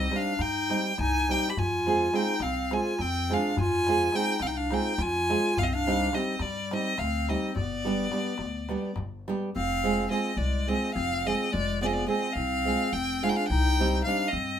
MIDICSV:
0, 0, Header, 1, 6, 480
1, 0, Start_track
1, 0, Tempo, 571429
1, 1311, Time_signature, 7, 3, 24, 8
1, 6108, Tempo, 566572
1, 12313, End_track
2, 0, Start_track
2, 0, Title_t, "Violin"
2, 0, Program_c, 0, 40
2, 0, Note_on_c, 0, 75, 92
2, 135, Note_on_c, 0, 77, 95
2, 147, Note_off_c, 0, 75, 0
2, 349, Note_on_c, 0, 79, 96
2, 362, Note_off_c, 0, 77, 0
2, 830, Note_off_c, 0, 79, 0
2, 846, Note_on_c, 0, 80, 110
2, 1107, Note_on_c, 0, 79, 99
2, 1120, Note_off_c, 0, 80, 0
2, 1259, Note_on_c, 0, 83, 75
2, 1272, Note_off_c, 0, 79, 0
2, 1334, Note_on_c, 0, 80, 95
2, 1347, Note_off_c, 0, 83, 0
2, 1810, Note_on_c, 0, 79, 91
2, 1823, Note_off_c, 0, 80, 0
2, 2036, Note_on_c, 0, 77, 82
2, 2048, Note_off_c, 0, 79, 0
2, 2299, Note_on_c, 0, 80, 88
2, 2312, Note_off_c, 0, 77, 0
2, 2533, Note_on_c, 0, 79, 96
2, 2545, Note_off_c, 0, 80, 0
2, 2800, Note_on_c, 0, 77, 88
2, 2813, Note_off_c, 0, 79, 0
2, 3011, Note_off_c, 0, 77, 0
2, 3027, Note_on_c, 0, 80, 109
2, 3491, Note_on_c, 0, 79, 101
2, 3504, Note_off_c, 0, 80, 0
2, 3714, Note_on_c, 0, 77, 90
2, 3727, Note_off_c, 0, 79, 0
2, 3755, Note_on_c, 0, 79, 69
2, 3768, Note_off_c, 0, 77, 0
2, 3842, Note_on_c, 0, 77, 79
2, 3854, Note_off_c, 0, 79, 0
2, 3979, Note_on_c, 0, 79, 88
2, 3992, Note_off_c, 0, 77, 0
2, 4215, Note_on_c, 0, 80, 109
2, 4228, Note_off_c, 0, 79, 0
2, 4692, Note_on_c, 0, 77, 93
2, 4704, Note_off_c, 0, 80, 0
2, 4735, Note_on_c, 0, 75, 69
2, 4748, Note_off_c, 0, 77, 0
2, 4814, Note_on_c, 0, 77, 99
2, 4827, Note_off_c, 0, 75, 0
2, 5162, Note_on_c, 0, 75, 83
2, 5175, Note_off_c, 0, 77, 0
2, 5390, Note_on_c, 0, 74, 83
2, 5402, Note_off_c, 0, 75, 0
2, 5656, Note_on_c, 0, 75, 90
2, 5668, Note_off_c, 0, 74, 0
2, 5869, Note_on_c, 0, 77, 88
2, 5881, Note_off_c, 0, 75, 0
2, 6129, Note_on_c, 0, 75, 81
2, 6142, Note_off_c, 0, 77, 0
2, 6353, Note_off_c, 0, 75, 0
2, 6360, Note_on_c, 0, 74, 85
2, 7511, Note_off_c, 0, 74, 0
2, 8051, Note_on_c, 0, 77, 91
2, 8481, Note_off_c, 0, 77, 0
2, 8517, Note_on_c, 0, 75, 77
2, 8738, Note_on_c, 0, 74, 74
2, 8751, Note_off_c, 0, 75, 0
2, 8997, Note_on_c, 0, 75, 82
2, 9010, Note_off_c, 0, 74, 0
2, 9212, Note_off_c, 0, 75, 0
2, 9218, Note_on_c, 0, 77, 95
2, 9494, Note_on_c, 0, 75, 90
2, 9507, Note_off_c, 0, 77, 0
2, 9714, Note_on_c, 0, 74, 97
2, 9727, Note_off_c, 0, 75, 0
2, 9956, Note_off_c, 0, 74, 0
2, 9962, Note_on_c, 0, 74, 90
2, 10011, Note_on_c, 0, 75, 61
2, 10024, Note_off_c, 0, 74, 0
2, 10060, Note_on_c, 0, 74, 81
2, 10072, Note_off_c, 0, 75, 0
2, 10178, Note_off_c, 0, 74, 0
2, 10191, Note_on_c, 0, 75, 84
2, 10391, Note_on_c, 0, 77, 95
2, 10403, Note_off_c, 0, 75, 0
2, 10902, Note_on_c, 0, 79, 91
2, 10915, Note_off_c, 0, 77, 0
2, 11162, Note_on_c, 0, 77, 93
2, 11174, Note_off_c, 0, 79, 0
2, 11209, Note_on_c, 0, 79, 73
2, 11222, Note_off_c, 0, 77, 0
2, 11269, Note_on_c, 0, 77, 96
2, 11281, Note_off_c, 0, 79, 0
2, 11365, Note_off_c, 0, 77, 0
2, 11370, Note_on_c, 0, 79, 102
2, 11817, Note_off_c, 0, 79, 0
2, 11845, Note_on_c, 0, 77, 97
2, 12048, Note_on_c, 0, 75, 87
2, 12061, Note_off_c, 0, 77, 0
2, 12313, Note_off_c, 0, 75, 0
2, 12313, End_track
3, 0, Start_track
3, 0, Title_t, "Nylon-string guitar"
3, 0, Program_c, 1, 24
3, 92, Note_on_c, 1, 55, 58
3, 98, Note_on_c, 1, 60, 52
3, 103, Note_on_c, 1, 63, 50
3, 106, Note_on_c, 1, 67, 66
3, 269, Note_off_c, 1, 55, 0
3, 272, Note_off_c, 1, 60, 0
3, 274, Note_off_c, 1, 63, 0
3, 277, Note_off_c, 1, 67, 0
3, 584, Note_on_c, 1, 55, 59
3, 591, Note_on_c, 1, 60, 58
3, 595, Note_on_c, 1, 63, 56
3, 600, Note_on_c, 1, 67, 57
3, 765, Note_off_c, 1, 55, 0
3, 768, Note_off_c, 1, 60, 0
3, 770, Note_off_c, 1, 63, 0
3, 773, Note_off_c, 1, 67, 0
3, 1083, Note_on_c, 1, 55, 62
3, 1089, Note_on_c, 1, 60, 62
3, 1094, Note_on_c, 1, 63, 53
3, 1100, Note_on_c, 1, 67, 68
3, 1262, Note_off_c, 1, 55, 0
3, 1264, Note_off_c, 1, 60, 0
3, 1267, Note_off_c, 1, 63, 0
3, 1270, Note_off_c, 1, 67, 0
3, 1566, Note_on_c, 1, 56, 70
3, 1571, Note_on_c, 1, 60, 72
3, 1575, Note_on_c, 1, 65, 67
3, 1581, Note_on_c, 1, 68, 88
3, 1737, Note_off_c, 1, 56, 0
3, 1740, Note_off_c, 1, 60, 0
3, 1742, Note_off_c, 1, 65, 0
3, 1743, Note_off_c, 1, 68, 0
3, 1791, Note_on_c, 1, 56, 64
3, 1795, Note_on_c, 1, 60, 48
3, 1799, Note_on_c, 1, 65, 53
3, 1803, Note_on_c, 1, 68, 53
3, 1961, Note_off_c, 1, 56, 0
3, 1963, Note_off_c, 1, 60, 0
3, 1965, Note_off_c, 1, 65, 0
3, 1967, Note_off_c, 1, 68, 0
3, 2277, Note_on_c, 1, 56, 64
3, 2281, Note_on_c, 1, 60, 55
3, 2286, Note_on_c, 1, 65, 56
3, 2291, Note_on_c, 1, 68, 63
3, 2453, Note_off_c, 1, 56, 0
3, 2454, Note_off_c, 1, 60, 0
3, 2457, Note_off_c, 1, 65, 0
3, 2459, Note_off_c, 1, 68, 0
3, 2769, Note_on_c, 1, 56, 61
3, 2776, Note_on_c, 1, 60, 57
3, 2781, Note_on_c, 1, 65, 62
3, 2787, Note_on_c, 1, 68, 72
3, 2946, Note_off_c, 1, 56, 0
3, 2949, Note_off_c, 1, 60, 0
3, 2952, Note_off_c, 1, 65, 0
3, 2954, Note_off_c, 1, 68, 0
3, 3255, Note_on_c, 1, 56, 69
3, 3261, Note_on_c, 1, 60, 62
3, 3263, Note_on_c, 1, 65, 67
3, 3273, Note_on_c, 1, 68, 85
3, 3422, Note_off_c, 1, 56, 0
3, 3424, Note_off_c, 1, 60, 0
3, 3426, Note_off_c, 1, 65, 0
3, 3431, Note_off_c, 1, 68, 0
3, 3475, Note_on_c, 1, 56, 55
3, 3481, Note_on_c, 1, 60, 51
3, 3485, Note_on_c, 1, 65, 49
3, 3493, Note_on_c, 1, 68, 55
3, 3643, Note_off_c, 1, 56, 0
3, 3646, Note_off_c, 1, 60, 0
3, 3648, Note_off_c, 1, 65, 0
3, 3652, Note_off_c, 1, 68, 0
3, 3960, Note_on_c, 1, 56, 61
3, 3965, Note_on_c, 1, 60, 58
3, 3969, Note_on_c, 1, 65, 58
3, 3974, Note_on_c, 1, 68, 71
3, 4134, Note_off_c, 1, 56, 0
3, 4136, Note_off_c, 1, 60, 0
3, 4138, Note_off_c, 1, 65, 0
3, 4141, Note_off_c, 1, 68, 0
3, 4448, Note_on_c, 1, 56, 57
3, 4450, Note_on_c, 1, 60, 59
3, 4457, Note_on_c, 1, 65, 55
3, 4462, Note_on_c, 1, 68, 78
3, 4624, Note_off_c, 1, 56, 0
3, 4624, Note_off_c, 1, 60, 0
3, 4629, Note_off_c, 1, 65, 0
3, 4631, Note_off_c, 1, 68, 0
3, 4929, Note_on_c, 1, 55, 81
3, 4934, Note_on_c, 1, 60, 69
3, 4938, Note_on_c, 1, 63, 75
3, 4941, Note_on_c, 1, 67, 88
3, 5098, Note_off_c, 1, 55, 0
3, 5101, Note_off_c, 1, 60, 0
3, 5101, Note_off_c, 1, 63, 0
3, 5104, Note_off_c, 1, 67, 0
3, 5150, Note_on_c, 1, 55, 60
3, 5156, Note_on_c, 1, 60, 58
3, 5162, Note_on_c, 1, 63, 56
3, 5170, Note_on_c, 1, 67, 68
3, 5319, Note_off_c, 1, 55, 0
3, 5322, Note_off_c, 1, 60, 0
3, 5323, Note_off_c, 1, 63, 0
3, 5329, Note_off_c, 1, 67, 0
3, 5640, Note_on_c, 1, 55, 68
3, 5646, Note_on_c, 1, 60, 49
3, 5648, Note_on_c, 1, 63, 54
3, 5654, Note_on_c, 1, 67, 68
3, 5812, Note_off_c, 1, 55, 0
3, 5815, Note_off_c, 1, 60, 0
3, 5815, Note_off_c, 1, 63, 0
3, 5819, Note_off_c, 1, 67, 0
3, 6125, Note_on_c, 1, 55, 57
3, 6129, Note_on_c, 1, 60, 59
3, 6132, Note_on_c, 1, 63, 55
3, 6138, Note_on_c, 1, 67, 66
3, 6302, Note_off_c, 1, 55, 0
3, 6302, Note_off_c, 1, 60, 0
3, 6305, Note_off_c, 1, 63, 0
3, 6308, Note_off_c, 1, 67, 0
3, 6596, Note_on_c, 1, 55, 79
3, 6603, Note_on_c, 1, 59, 63
3, 6605, Note_on_c, 1, 62, 65
3, 6612, Note_on_c, 1, 67, 86
3, 6772, Note_off_c, 1, 55, 0
3, 6776, Note_off_c, 1, 59, 0
3, 6776, Note_off_c, 1, 62, 0
3, 6780, Note_off_c, 1, 67, 0
3, 6822, Note_on_c, 1, 55, 54
3, 6829, Note_on_c, 1, 59, 56
3, 6834, Note_on_c, 1, 62, 53
3, 6837, Note_on_c, 1, 67, 59
3, 6996, Note_off_c, 1, 55, 0
3, 7000, Note_off_c, 1, 59, 0
3, 7001, Note_off_c, 1, 62, 0
3, 7003, Note_off_c, 1, 67, 0
3, 7312, Note_on_c, 1, 59, 66
3, 7313, Note_on_c, 1, 55, 60
3, 7318, Note_on_c, 1, 62, 57
3, 7326, Note_on_c, 1, 67, 78
3, 7489, Note_off_c, 1, 59, 0
3, 7490, Note_off_c, 1, 55, 0
3, 7493, Note_off_c, 1, 62, 0
3, 7497, Note_off_c, 1, 67, 0
3, 7807, Note_on_c, 1, 55, 74
3, 7812, Note_on_c, 1, 59, 67
3, 7818, Note_on_c, 1, 62, 58
3, 7822, Note_on_c, 1, 67, 77
3, 7985, Note_off_c, 1, 55, 0
3, 7987, Note_off_c, 1, 59, 0
3, 7991, Note_off_c, 1, 62, 0
3, 7992, Note_off_c, 1, 67, 0
3, 8282, Note_on_c, 1, 56, 77
3, 8285, Note_on_c, 1, 60, 74
3, 8289, Note_on_c, 1, 65, 66
3, 8298, Note_on_c, 1, 68, 84
3, 8456, Note_off_c, 1, 56, 0
3, 8457, Note_off_c, 1, 60, 0
3, 8460, Note_off_c, 1, 65, 0
3, 8465, Note_off_c, 1, 68, 0
3, 8503, Note_on_c, 1, 56, 59
3, 8508, Note_on_c, 1, 60, 53
3, 8512, Note_on_c, 1, 65, 52
3, 8519, Note_on_c, 1, 68, 64
3, 8678, Note_off_c, 1, 56, 0
3, 8680, Note_off_c, 1, 60, 0
3, 8682, Note_off_c, 1, 65, 0
3, 8686, Note_off_c, 1, 68, 0
3, 8992, Note_on_c, 1, 56, 65
3, 8999, Note_on_c, 1, 60, 54
3, 9005, Note_on_c, 1, 65, 59
3, 9010, Note_on_c, 1, 68, 66
3, 9171, Note_off_c, 1, 56, 0
3, 9174, Note_off_c, 1, 60, 0
3, 9178, Note_off_c, 1, 65, 0
3, 9179, Note_off_c, 1, 68, 0
3, 9483, Note_on_c, 1, 56, 62
3, 9487, Note_on_c, 1, 60, 64
3, 9495, Note_on_c, 1, 65, 66
3, 9499, Note_on_c, 1, 68, 73
3, 9664, Note_off_c, 1, 56, 0
3, 9665, Note_off_c, 1, 60, 0
3, 9669, Note_off_c, 1, 65, 0
3, 9670, Note_off_c, 1, 68, 0
3, 9957, Note_on_c, 1, 56, 80
3, 9964, Note_on_c, 1, 60, 74
3, 9972, Note_on_c, 1, 65, 78
3, 9978, Note_on_c, 1, 68, 82
3, 10133, Note_off_c, 1, 56, 0
3, 10137, Note_off_c, 1, 60, 0
3, 10141, Note_off_c, 1, 65, 0
3, 10143, Note_off_c, 1, 68, 0
3, 10169, Note_on_c, 1, 56, 67
3, 10178, Note_on_c, 1, 60, 52
3, 10181, Note_on_c, 1, 65, 54
3, 10185, Note_on_c, 1, 68, 71
3, 10350, Note_off_c, 1, 56, 0
3, 10355, Note_off_c, 1, 60, 0
3, 10355, Note_off_c, 1, 65, 0
3, 10358, Note_off_c, 1, 68, 0
3, 10668, Note_on_c, 1, 56, 67
3, 10670, Note_on_c, 1, 60, 60
3, 10675, Note_on_c, 1, 65, 60
3, 10684, Note_on_c, 1, 68, 75
3, 10848, Note_off_c, 1, 56, 0
3, 10848, Note_off_c, 1, 60, 0
3, 10851, Note_off_c, 1, 65, 0
3, 10856, Note_off_c, 1, 68, 0
3, 11154, Note_on_c, 1, 56, 69
3, 11159, Note_on_c, 1, 60, 63
3, 11162, Note_on_c, 1, 65, 63
3, 11167, Note_on_c, 1, 68, 76
3, 11337, Note_off_c, 1, 56, 0
3, 11340, Note_off_c, 1, 60, 0
3, 11341, Note_off_c, 1, 65, 0
3, 11344, Note_off_c, 1, 68, 0
3, 11635, Note_on_c, 1, 55, 77
3, 11641, Note_on_c, 1, 60, 79
3, 11645, Note_on_c, 1, 63, 73
3, 11648, Note_on_c, 1, 67, 81
3, 11811, Note_off_c, 1, 55, 0
3, 11814, Note_off_c, 1, 60, 0
3, 11815, Note_off_c, 1, 63, 0
3, 11817, Note_off_c, 1, 67, 0
3, 11856, Note_on_c, 1, 55, 67
3, 11862, Note_on_c, 1, 60, 54
3, 11870, Note_on_c, 1, 63, 58
3, 11876, Note_on_c, 1, 67, 64
3, 12032, Note_off_c, 1, 55, 0
3, 12035, Note_off_c, 1, 60, 0
3, 12039, Note_off_c, 1, 63, 0
3, 12042, Note_off_c, 1, 67, 0
3, 12313, End_track
4, 0, Start_track
4, 0, Title_t, "Clarinet"
4, 0, Program_c, 2, 71
4, 0, Note_on_c, 2, 60, 78
4, 124, Note_on_c, 2, 62, 82
4, 137, Note_off_c, 2, 60, 0
4, 344, Note_on_c, 2, 63, 96
4, 356, Note_off_c, 2, 62, 0
4, 691, Note_off_c, 2, 63, 0
4, 834, Note_on_c, 2, 63, 89
4, 1106, Note_off_c, 2, 63, 0
4, 1106, Note_on_c, 2, 63, 83
4, 1247, Note_on_c, 2, 67, 64
4, 1260, Note_off_c, 2, 63, 0
4, 1320, Note_on_c, 2, 65, 92
4, 1333, Note_off_c, 2, 67, 0
4, 1824, Note_on_c, 2, 63, 84
4, 1837, Note_off_c, 2, 65, 0
4, 2040, Note_on_c, 2, 60, 82
4, 2052, Note_off_c, 2, 63, 0
4, 2301, Note_on_c, 2, 65, 72
4, 2313, Note_off_c, 2, 60, 0
4, 2525, Note_on_c, 2, 60, 88
4, 2538, Note_off_c, 2, 65, 0
4, 2818, Note_on_c, 2, 62, 85
4, 2830, Note_off_c, 2, 60, 0
4, 3019, Note_off_c, 2, 62, 0
4, 3027, Note_on_c, 2, 65, 94
4, 3486, Note_on_c, 2, 63, 81
4, 3499, Note_off_c, 2, 65, 0
4, 3712, Note_on_c, 2, 60, 81
4, 3725, Note_off_c, 2, 63, 0
4, 3762, Note_on_c, 2, 63, 66
4, 3775, Note_off_c, 2, 60, 0
4, 3831, Note_on_c, 2, 62, 81
4, 3844, Note_off_c, 2, 63, 0
4, 3956, Note_on_c, 2, 63, 73
4, 3968, Note_off_c, 2, 62, 0
4, 4206, Note_on_c, 2, 65, 87
4, 4218, Note_off_c, 2, 63, 0
4, 4709, Note_on_c, 2, 60, 85
4, 4721, Note_off_c, 2, 65, 0
4, 4749, Note_off_c, 2, 60, 0
4, 4749, Note_on_c, 2, 60, 79
4, 4824, Note_on_c, 2, 62, 91
4, 4836, Note_off_c, 2, 60, 0
4, 5185, Note_on_c, 2, 60, 73
4, 5197, Note_off_c, 2, 62, 0
4, 5395, Note_on_c, 2, 55, 70
4, 5407, Note_off_c, 2, 60, 0
4, 5666, Note_on_c, 2, 60, 69
4, 5679, Note_off_c, 2, 55, 0
4, 5889, Note_off_c, 2, 60, 0
4, 5889, Note_on_c, 2, 60, 83
4, 6155, Note_off_c, 2, 60, 0
4, 6155, Note_on_c, 2, 60, 71
4, 6367, Note_off_c, 2, 60, 0
4, 6387, Note_on_c, 2, 59, 74
4, 7524, Note_off_c, 2, 59, 0
4, 8039, Note_on_c, 2, 60, 91
4, 8475, Note_off_c, 2, 60, 0
4, 8509, Note_on_c, 2, 60, 68
4, 8739, Note_on_c, 2, 56, 73
4, 8752, Note_off_c, 2, 60, 0
4, 8997, Note_on_c, 2, 60, 67
4, 9010, Note_off_c, 2, 56, 0
4, 9213, Note_off_c, 2, 60, 0
4, 9218, Note_on_c, 2, 60, 79
4, 9491, Note_off_c, 2, 60, 0
4, 9491, Note_on_c, 2, 60, 74
4, 9706, Note_on_c, 2, 56, 83
4, 9719, Note_off_c, 2, 60, 0
4, 9950, Note_off_c, 2, 56, 0
4, 9955, Note_on_c, 2, 59, 72
4, 10002, Note_on_c, 2, 60, 59
4, 10014, Note_off_c, 2, 59, 0
4, 10067, Note_on_c, 2, 59, 75
4, 10080, Note_off_c, 2, 60, 0
4, 10182, Note_off_c, 2, 59, 0
4, 10186, Note_on_c, 2, 60, 81
4, 10406, Note_off_c, 2, 60, 0
4, 10406, Note_on_c, 2, 60, 97
4, 10903, Note_off_c, 2, 60, 0
4, 10903, Note_on_c, 2, 60, 95
4, 11173, Note_on_c, 2, 62, 80
4, 11185, Note_off_c, 2, 60, 0
4, 11215, Note_on_c, 2, 63, 58
4, 11227, Note_off_c, 2, 62, 0
4, 11277, Note_on_c, 2, 62, 78
4, 11289, Note_off_c, 2, 63, 0
4, 11389, Note_off_c, 2, 62, 0
4, 11394, Note_on_c, 2, 63, 93
4, 11830, Note_off_c, 2, 63, 0
4, 11864, Note_on_c, 2, 62, 74
4, 12070, Note_on_c, 2, 60, 84
4, 12083, Note_off_c, 2, 62, 0
4, 12313, Note_off_c, 2, 60, 0
4, 12313, End_track
5, 0, Start_track
5, 0, Title_t, "Upright bass"
5, 0, Program_c, 3, 32
5, 327, Note_on_c, 3, 43, 73
5, 623, Note_off_c, 3, 43, 0
5, 828, Note_on_c, 3, 36, 92
5, 1122, Note_off_c, 3, 36, 0
5, 1321, Note_on_c, 3, 41, 87
5, 1735, Note_off_c, 3, 41, 0
5, 2015, Note_on_c, 3, 36, 79
5, 2309, Note_off_c, 3, 36, 0
5, 2515, Note_on_c, 3, 41, 94
5, 2806, Note_off_c, 3, 41, 0
5, 3006, Note_on_c, 3, 41, 92
5, 3418, Note_off_c, 3, 41, 0
5, 3699, Note_on_c, 3, 36, 78
5, 3991, Note_off_c, 3, 36, 0
5, 4186, Note_on_c, 3, 41, 107
5, 4480, Note_off_c, 3, 41, 0
5, 4682, Note_on_c, 3, 36, 90
5, 5094, Note_off_c, 3, 36, 0
5, 5373, Note_on_c, 3, 43, 80
5, 5665, Note_off_c, 3, 43, 0
5, 5866, Note_on_c, 3, 38, 99
5, 6158, Note_off_c, 3, 38, 0
5, 6356, Note_on_c, 3, 31, 94
5, 6771, Note_off_c, 3, 31, 0
5, 7055, Note_on_c, 3, 38, 73
5, 7349, Note_off_c, 3, 38, 0
5, 7550, Note_on_c, 3, 31, 82
5, 7843, Note_off_c, 3, 31, 0
5, 8045, Note_on_c, 3, 29, 88
5, 8458, Note_off_c, 3, 29, 0
5, 8730, Note_on_c, 3, 36, 91
5, 9025, Note_off_c, 3, 36, 0
5, 9230, Note_on_c, 3, 29, 104
5, 9524, Note_off_c, 3, 29, 0
5, 9722, Note_on_c, 3, 29, 100
5, 10135, Note_off_c, 3, 29, 0
5, 10416, Note_on_c, 3, 36, 90
5, 10709, Note_off_c, 3, 36, 0
5, 10900, Note_on_c, 3, 29, 91
5, 11195, Note_off_c, 3, 29, 0
5, 11386, Note_on_c, 3, 36, 106
5, 11802, Note_off_c, 3, 36, 0
5, 12088, Note_on_c, 3, 43, 85
5, 12313, Note_off_c, 3, 43, 0
5, 12313, End_track
6, 0, Start_track
6, 0, Title_t, "Darbuka"
6, 98, Note_on_c, 9, 63, 63
6, 182, Note_off_c, 9, 63, 0
6, 327, Note_on_c, 9, 63, 72
6, 411, Note_off_c, 9, 63, 0
6, 590, Note_on_c, 9, 63, 68
6, 674, Note_off_c, 9, 63, 0
6, 710, Note_on_c, 9, 63, 27
6, 794, Note_off_c, 9, 63, 0
6, 822, Note_on_c, 9, 63, 64
6, 822, Note_on_c, 9, 64, 56
6, 906, Note_off_c, 9, 63, 0
6, 906, Note_off_c, 9, 64, 0
6, 1090, Note_on_c, 9, 63, 62
6, 1174, Note_off_c, 9, 63, 0
6, 1321, Note_on_c, 9, 64, 85
6, 1405, Note_off_c, 9, 64, 0
6, 1568, Note_on_c, 9, 63, 63
6, 1652, Note_off_c, 9, 63, 0
6, 1794, Note_on_c, 9, 63, 72
6, 1878, Note_off_c, 9, 63, 0
6, 2016, Note_on_c, 9, 63, 81
6, 2100, Note_off_c, 9, 63, 0
6, 2277, Note_on_c, 9, 63, 78
6, 2361, Note_off_c, 9, 63, 0
6, 2509, Note_on_c, 9, 63, 74
6, 2593, Note_off_c, 9, 63, 0
6, 2778, Note_on_c, 9, 63, 65
6, 2862, Note_off_c, 9, 63, 0
6, 2998, Note_on_c, 9, 64, 102
6, 3082, Note_off_c, 9, 64, 0
6, 3249, Note_on_c, 9, 63, 78
6, 3333, Note_off_c, 9, 63, 0
6, 3353, Note_on_c, 9, 63, 29
6, 3437, Note_off_c, 9, 63, 0
6, 3463, Note_on_c, 9, 63, 73
6, 3547, Note_off_c, 9, 63, 0
6, 3692, Note_on_c, 9, 63, 74
6, 3776, Note_off_c, 9, 63, 0
6, 3952, Note_on_c, 9, 63, 79
6, 4036, Note_off_c, 9, 63, 0
6, 4188, Note_on_c, 9, 63, 75
6, 4272, Note_off_c, 9, 63, 0
6, 4454, Note_on_c, 9, 63, 80
6, 4538, Note_off_c, 9, 63, 0
6, 4682, Note_on_c, 9, 64, 88
6, 4766, Note_off_c, 9, 64, 0
6, 4935, Note_on_c, 9, 63, 64
6, 5019, Note_off_c, 9, 63, 0
6, 5051, Note_on_c, 9, 63, 26
6, 5135, Note_off_c, 9, 63, 0
6, 5151, Note_on_c, 9, 63, 76
6, 5235, Note_off_c, 9, 63, 0
6, 5371, Note_on_c, 9, 63, 80
6, 5455, Note_off_c, 9, 63, 0
6, 5502, Note_on_c, 9, 63, 27
6, 5586, Note_off_c, 9, 63, 0
6, 5639, Note_on_c, 9, 63, 84
6, 5723, Note_off_c, 9, 63, 0
6, 5862, Note_on_c, 9, 63, 70
6, 5946, Note_off_c, 9, 63, 0
6, 6121, Note_on_c, 9, 63, 72
6, 6206, Note_off_c, 9, 63, 0
6, 6350, Note_on_c, 9, 64, 87
6, 6435, Note_off_c, 9, 64, 0
6, 6477, Note_on_c, 9, 63, 28
6, 6562, Note_off_c, 9, 63, 0
6, 6602, Note_on_c, 9, 63, 58
6, 6687, Note_off_c, 9, 63, 0
6, 6825, Note_on_c, 9, 63, 67
6, 6909, Note_off_c, 9, 63, 0
6, 6941, Note_on_c, 9, 63, 26
6, 7026, Note_off_c, 9, 63, 0
6, 7045, Note_on_c, 9, 63, 74
6, 7130, Note_off_c, 9, 63, 0
6, 7307, Note_on_c, 9, 63, 69
6, 7392, Note_off_c, 9, 63, 0
6, 7425, Note_on_c, 9, 63, 29
6, 7510, Note_off_c, 9, 63, 0
6, 7537, Note_on_c, 9, 63, 70
6, 7537, Note_on_c, 9, 64, 62
6, 7621, Note_off_c, 9, 63, 0
6, 7621, Note_off_c, 9, 64, 0
6, 7809, Note_on_c, 9, 63, 63
6, 7894, Note_off_c, 9, 63, 0
6, 12313, End_track
0, 0, End_of_file